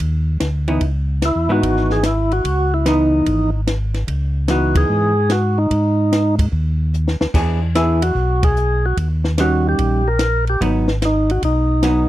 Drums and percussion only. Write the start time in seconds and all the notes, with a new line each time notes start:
0.00 kick, ride
0.40 snare, hi-hat pedal, ride
0.68 ride
0.81 kick, ride
1.22 snare, hi-hat pedal, ride
1.63 kick, ride
1.77 snare
1.90 snare
2.03 snare, hi-hat pedal, ride
2.31 ride
2.45 kick, ride
2.86 snare, hi-hat pedal, ride
3.26 kick, ride
3.67 snare, hi-hat pedal, ride
3.94 snare, ride
4.08 kick, ride
4.48 snare, hi-hat pedal, ride
4.75 kick, ride
5.30 snare, hi-hat pedal, ride
5.71 kick, ride
6.12 snare, hi-hat pedal, ride
6.39 kick, ride
6.52 kick
6.94 hi-hat pedal
7.08 snare
7.21 snare
7.34 kick, crash
7.75 snare, hi-hat pedal, ride
8.02 ride
8.16 kick
8.43 kick, ride
8.56 hi-hat pedal
8.97 kick, ride
9.24 snare
9.38 snare, hi-hat pedal, ride
9.79 kick, ride
10.19 snare, hi-hat pedal, ride
10.47 ride
10.61 kick, ride
10.88 snare
11.02 snare, hi-hat pedal, ride
11.30 ride
11.43 kick, ride
11.83 snare, hi-hat pedal, ride